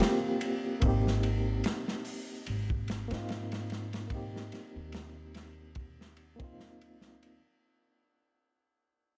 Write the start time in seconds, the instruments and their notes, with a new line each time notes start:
Already playing: reed electric piano A#3 C4 F4 G4
0.00 snare, ride
0.41 ride
0.80 upright bass G#1, reed electric piano A#3 C4, kick, ride
0.86 reed electric piano D#4 G4
1.07 snare
1.23 ride
1.64 snare, ride
1.88 snare
2.05 open hi-hat
2.46 upright bass G#1, ride
2.70 kick
2.88 snare, ride
3.08 upright bass G#2, reed electric piano A#3 C4, ride
3.12 reed electric piano D#4 F4, snare
3.29 snare, ride
3.52 snare, ride
3.70 snare, ride
3.93 snare, ride
4.08 reed electric piano A#3 C4, kick, ride
4.13 reed electric piano D#4 G4
4.36 snare
4.52 snare, ride
4.76 upright bass D#2
4.92 snare, ride
5.34 snare, ride
5.75 kick, ride
6.01 snare
6.17 ride
6.36 reed electric piano A#3 C4, kick, ride
6.41 reed electric piano D#4 F4
6.60 snare
6.81 ride
6.99 upright bass C2, snare
7.21 upright bass D#2, ride